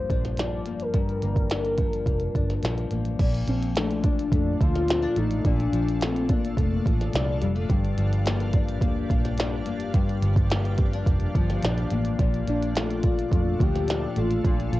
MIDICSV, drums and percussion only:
0, 0, Header, 1, 2, 480
1, 0, Start_track
1, 0, Tempo, 562324
1, 806, Time_signature, 4, 2, 24, 8
1, 12632, End_track
2, 0, Start_track
2, 0, Title_t, "Drums"
2, 85, Note_on_c, 9, 36, 86
2, 90, Note_on_c, 9, 42, 62
2, 170, Note_off_c, 9, 36, 0
2, 175, Note_off_c, 9, 42, 0
2, 213, Note_on_c, 9, 42, 55
2, 214, Note_on_c, 9, 38, 32
2, 298, Note_off_c, 9, 42, 0
2, 300, Note_off_c, 9, 38, 0
2, 319, Note_on_c, 9, 42, 79
2, 336, Note_on_c, 9, 38, 100
2, 405, Note_off_c, 9, 42, 0
2, 422, Note_off_c, 9, 38, 0
2, 560, Note_on_c, 9, 42, 64
2, 645, Note_off_c, 9, 42, 0
2, 680, Note_on_c, 9, 42, 48
2, 766, Note_off_c, 9, 42, 0
2, 800, Note_on_c, 9, 42, 79
2, 803, Note_on_c, 9, 36, 100
2, 886, Note_off_c, 9, 42, 0
2, 888, Note_off_c, 9, 36, 0
2, 930, Note_on_c, 9, 42, 31
2, 1016, Note_off_c, 9, 42, 0
2, 1044, Note_on_c, 9, 42, 68
2, 1129, Note_off_c, 9, 42, 0
2, 1162, Note_on_c, 9, 36, 90
2, 1170, Note_on_c, 9, 42, 47
2, 1247, Note_off_c, 9, 36, 0
2, 1255, Note_off_c, 9, 42, 0
2, 1280, Note_on_c, 9, 42, 91
2, 1291, Note_on_c, 9, 38, 106
2, 1366, Note_off_c, 9, 42, 0
2, 1376, Note_off_c, 9, 38, 0
2, 1407, Note_on_c, 9, 42, 33
2, 1492, Note_off_c, 9, 42, 0
2, 1518, Note_on_c, 9, 42, 78
2, 1523, Note_on_c, 9, 36, 88
2, 1603, Note_off_c, 9, 42, 0
2, 1609, Note_off_c, 9, 36, 0
2, 1651, Note_on_c, 9, 42, 53
2, 1736, Note_off_c, 9, 42, 0
2, 1760, Note_on_c, 9, 36, 75
2, 1768, Note_on_c, 9, 42, 70
2, 1845, Note_off_c, 9, 36, 0
2, 1853, Note_off_c, 9, 42, 0
2, 1876, Note_on_c, 9, 42, 33
2, 1961, Note_off_c, 9, 42, 0
2, 2005, Note_on_c, 9, 36, 85
2, 2012, Note_on_c, 9, 42, 59
2, 2091, Note_off_c, 9, 36, 0
2, 2097, Note_off_c, 9, 42, 0
2, 2133, Note_on_c, 9, 42, 51
2, 2134, Note_on_c, 9, 38, 31
2, 2218, Note_off_c, 9, 42, 0
2, 2219, Note_off_c, 9, 38, 0
2, 2242, Note_on_c, 9, 42, 76
2, 2259, Note_on_c, 9, 38, 98
2, 2327, Note_off_c, 9, 42, 0
2, 2345, Note_off_c, 9, 38, 0
2, 2370, Note_on_c, 9, 42, 30
2, 2456, Note_off_c, 9, 42, 0
2, 2482, Note_on_c, 9, 42, 63
2, 2567, Note_off_c, 9, 42, 0
2, 2605, Note_on_c, 9, 42, 46
2, 2690, Note_off_c, 9, 42, 0
2, 2726, Note_on_c, 9, 36, 104
2, 2726, Note_on_c, 9, 42, 90
2, 2727, Note_on_c, 9, 49, 101
2, 2811, Note_off_c, 9, 36, 0
2, 2812, Note_off_c, 9, 42, 0
2, 2812, Note_off_c, 9, 49, 0
2, 2855, Note_on_c, 9, 42, 35
2, 2940, Note_off_c, 9, 42, 0
2, 2968, Note_on_c, 9, 42, 79
2, 3053, Note_off_c, 9, 42, 0
2, 3095, Note_on_c, 9, 42, 57
2, 3180, Note_off_c, 9, 42, 0
2, 3206, Note_on_c, 9, 42, 93
2, 3217, Note_on_c, 9, 38, 116
2, 3291, Note_off_c, 9, 42, 0
2, 3302, Note_off_c, 9, 38, 0
2, 3334, Note_on_c, 9, 42, 35
2, 3419, Note_off_c, 9, 42, 0
2, 3445, Note_on_c, 9, 42, 89
2, 3448, Note_on_c, 9, 36, 97
2, 3530, Note_off_c, 9, 42, 0
2, 3533, Note_off_c, 9, 36, 0
2, 3577, Note_on_c, 9, 42, 60
2, 3662, Note_off_c, 9, 42, 0
2, 3684, Note_on_c, 9, 36, 84
2, 3691, Note_on_c, 9, 42, 83
2, 3769, Note_off_c, 9, 36, 0
2, 3776, Note_off_c, 9, 42, 0
2, 3930, Note_on_c, 9, 36, 89
2, 3936, Note_on_c, 9, 42, 66
2, 4015, Note_off_c, 9, 36, 0
2, 4022, Note_off_c, 9, 42, 0
2, 4057, Note_on_c, 9, 42, 59
2, 4058, Note_on_c, 9, 38, 35
2, 4142, Note_off_c, 9, 42, 0
2, 4144, Note_off_c, 9, 38, 0
2, 4167, Note_on_c, 9, 42, 84
2, 4184, Note_on_c, 9, 38, 110
2, 4252, Note_off_c, 9, 42, 0
2, 4270, Note_off_c, 9, 38, 0
2, 4407, Note_on_c, 9, 42, 71
2, 4492, Note_off_c, 9, 42, 0
2, 4530, Note_on_c, 9, 42, 53
2, 4615, Note_off_c, 9, 42, 0
2, 4649, Note_on_c, 9, 36, 113
2, 4650, Note_on_c, 9, 42, 87
2, 4734, Note_off_c, 9, 36, 0
2, 4736, Note_off_c, 9, 42, 0
2, 4779, Note_on_c, 9, 42, 35
2, 4864, Note_off_c, 9, 42, 0
2, 4893, Note_on_c, 9, 42, 78
2, 4978, Note_off_c, 9, 42, 0
2, 5022, Note_on_c, 9, 42, 53
2, 5108, Note_off_c, 9, 42, 0
2, 5130, Note_on_c, 9, 42, 91
2, 5140, Note_on_c, 9, 38, 124
2, 5215, Note_off_c, 9, 42, 0
2, 5225, Note_off_c, 9, 38, 0
2, 5259, Note_on_c, 9, 42, 34
2, 5344, Note_off_c, 9, 42, 0
2, 5368, Note_on_c, 9, 42, 85
2, 5370, Note_on_c, 9, 36, 99
2, 5453, Note_off_c, 9, 42, 0
2, 5456, Note_off_c, 9, 36, 0
2, 5501, Note_on_c, 9, 42, 55
2, 5586, Note_off_c, 9, 42, 0
2, 5607, Note_on_c, 9, 36, 76
2, 5616, Note_on_c, 9, 42, 87
2, 5692, Note_off_c, 9, 36, 0
2, 5702, Note_off_c, 9, 42, 0
2, 5853, Note_on_c, 9, 36, 91
2, 5862, Note_on_c, 9, 42, 70
2, 5938, Note_off_c, 9, 36, 0
2, 5948, Note_off_c, 9, 42, 0
2, 5983, Note_on_c, 9, 42, 55
2, 5985, Note_on_c, 9, 38, 33
2, 6068, Note_off_c, 9, 42, 0
2, 6070, Note_off_c, 9, 38, 0
2, 6089, Note_on_c, 9, 42, 90
2, 6106, Note_on_c, 9, 38, 115
2, 6174, Note_off_c, 9, 42, 0
2, 6192, Note_off_c, 9, 38, 0
2, 6331, Note_on_c, 9, 42, 70
2, 6416, Note_off_c, 9, 42, 0
2, 6452, Note_on_c, 9, 42, 54
2, 6538, Note_off_c, 9, 42, 0
2, 6570, Note_on_c, 9, 36, 110
2, 6572, Note_on_c, 9, 42, 88
2, 6655, Note_off_c, 9, 36, 0
2, 6657, Note_off_c, 9, 42, 0
2, 6698, Note_on_c, 9, 42, 35
2, 6783, Note_off_c, 9, 42, 0
2, 6811, Note_on_c, 9, 42, 75
2, 6896, Note_off_c, 9, 42, 0
2, 6939, Note_on_c, 9, 42, 55
2, 7025, Note_off_c, 9, 42, 0
2, 7050, Note_on_c, 9, 42, 97
2, 7061, Note_on_c, 9, 38, 121
2, 7136, Note_off_c, 9, 42, 0
2, 7146, Note_off_c, 9, 38, 0
2, 7175, Note_on_c, 9, 42, 35
2, 7260, Note_off_c, 9, 42, 0
2, 7285, Note_on_c, 9, 42, 88
2, 7288, Note_on_c, 9, 36, 100
2, 7370, Note_off_c, 9, 42, 0
2, 7374, Note_off_c, 9, 36, 0
2, 7416, Note_on_c, 9, 42, 58
2, 7501, Note_off_c, 9, 42, 0
2, 7524, Note_on_c, 9, 36, 79
2, 7532, Note_on_c, 9, 42, 83
2, 7610, Note_off_c, 9, 36, 0
2, 7617, Note_off_c, 9, 42, 0
2, 7769, Note_on_c, 9, 36, 93
2, 7776, Note_on_c, 9, 42, 71
2, 7855, Note_off_c, 9, 36, 0
2, 7861, Note_off_c, 9, 42, 0
2, 7897, Note_on_c, 9, 42, 60
2, 7898, Note_on_c, 9, 38, 34
2, 7982, Note_off_c, 9, 42, 0
2, 7984, Note_off_c, 9, 38, 0
2, 8005, Note_on_c, 9, 42, 87
2, 8023, Note_on_c, 9, 38, 107
2, 8091, Note_off_c, 9, 42, 0
2, 8108, Note_off_c, 9, 38, 0
2, 8246, Note_on_c, 9, 42, 63
2, 8331, Note_off_c, 9, 42, 0
2, 8365, Note_on_c, 9, 42, 53
2, 8451, Note_off_c, 9, 42, 0
2, 8486, Note_on_c, 9, 42, 83
2, 8487, Note_on_c, 9, 36, 116
2, 8571, Note_off_c, 9, 42, 0
2, 8572, Note_off_c, 9, 36, 0
2, 8616, Note_on_c, 9, 42, 34
2, 8701, Note_off_c, 9, 42, 0
2, 8728, Note_on_c, 9, 42, 76
2, 8814, Note_off_c, 9, 42, 0
2, 8845, Note_on_c, 9, 36, 95
2, 8854, Note_on_c, 9, 42, 55
2, 8930, Note_off_c, 9, 36, 0
2, 8939, Note_off_c, 9, 42, 0
2, 8965, Note_on_c, 9, 42, 96
2, 8976, Note_on_c, 9, 38, 127
2, 9050, Note_off_c, 9, 42, 0
2, 9061, Note_off_c, 9, 38, 0
2, 9092, Note_on_c, 9, 42, 35
2, 9177, Note_off_c, 9, 42, 0
2, 9200, Note_on_c, 9, 42, 84
2, 9206, Note_on_c, 9, 36, 99
2, 9285, Note_off_c, 9, 42, 0
2, 9291, Note_off_c, 9, 36, 0
2, 9333, Note_on_c, 9, 42, 57
2, 9418, Note_off_c, 9, 42, 0
2, 9442, Note_on_c, 9, 36, 79
2, 9449, Note_on_c, 9, 42, 85
2, 9528, Note_off_c, 9, 36, 0
2, 9534, Note_off_c, 9, 42, 0
2, 9558, Note_on_c, 9, 42, 36
2, 9643, Note_off_c, 9, 42, 0
2, 9687, Note_on_c, 9, 36, 95
2, 9691, Note_on_c, 9, 42, 65
2, 9773, Note_off_c, 9, 36, 0
2, 9777, Note_off_c, 9, 42, 0
2, 9814, Note_on_c, 9, 42, 54
2, 9816, Note_on_c, 9, 38, 35
2, 9899, Note_off_c, 9, 42, 0
2, 9901, Note_off_c, 9, 38, 0
2, 9923, Note_on_c, 9, 42, 87
2, 9941, Note_on_c, 9, 38, 106
2, 10008, Note_off_c, 9, 42, 0
2, 10026, Note_off_c, 9, 38, 0
2, 10053, Note_on_c, 9, 42, 33
2, 10138, Note_off_c, 9, 42, 0
2, 10162, Note_on_c, 9, 42, 71
2, 10247, Note_off_c, 9, 42, 0
2, 10285, Note_on_c, 9, 42, 52
2, 10371, Note_off_c, 9, 42, 0
2, 10407, Note_on_c, 9, 36, 114
2, 10407, Note_on_c, 9, 42, 93
2, 10492, Note_off_c, 9, 36, 0
2, 10493, Note_off_c, 9, 42, 0
2, 10534, Note_on_c, 9, 42, 35
2, 10619, Note_off_c, 9, 42, 0
2, 10648, Note_on_c, 9, 42, 76
2, 10734, Note_off_c, 9, 42, 0
2, 10776, Note_on_c, 9, 42, 57
2, 10861, Note_off_c, 9, 42, 0
2, 10887, Note_on_c, 9, 42, 102
2, 10897, Note_on_c, 9, 38, 127
2, 10972, Note_off_c, 9, 42, 0
2, 10982, Note_off_c, 9, 38, 0
2, 11014, Note_on_c, 9, 42, 38
2, 11100, Note_off_c, 9, 42, 0
2, 11122, Note_on_c, 9, 42, 86
2, 11127, Note_on_c, 9, 36, 97
2, 11208, Note_off_c, 9, 42, 0
2, 11213, Note_off_c, 9, 36, 0
2, 11256, Note_on_c, 9, 42, 60
2, 11341, Note_off_c, 9, 42, 0
2, 11365, Note_on_c, 9, 36, 79
2, 11375, Note_on_c, 9, 42, 81
2, 11450, Note_off_c, 9, 36, 0
2, 11461, Note_off_c, 9, 42, 0
2, 11611, Note_on_c, 9, 36, 95
2, 11619, Note_on_c, 9, 42, 68
2, 11696, Note_off_c, 9, 36, 0
2, 11704, Note_off_c, 9, 42, 0
2, 11742, Note_on_c, 9, 42, 57
2, 11744, Note_on_c, 9, 38, 34
2, 11828, Note_off_c, 9, 42, 0
2, 11829, Note_off_c, 9, 38, 0
2, 11850, Note_on_c, 9, 42, 87
2, 11867, Note_on_c, 9, 38, 102
2, 11935, Note_off_c, 9, 42, 0
2, 11952, Note_off_c, 9, 38, 0
2, 12091, Note_on_c, 9, 42, 71
2, 12176, Note_off_c, 9, 42, 0
2, 12213, Note_on_c, 9, 42, 48
2, 12299, Note_off_c, 9, 42, 0
2, 12332, Note_on_c, 9, 36, 118
2, 12335, Note_on_c, 9, 42, 85
2, 12417, Note_off_c, 9, 36, 0
2, 12420, Note_off_c, 9, 42, 0
2, 12462, Note_on_c, 9, 42, 38
2, 12548, Note_off_c, 9, 42, 0
2, 12575, Note_on_c, 9, 42, 78
2, 12632, Note_off_c, 9, 42, 0
2, 12632, End_track
0, 0, End_of_file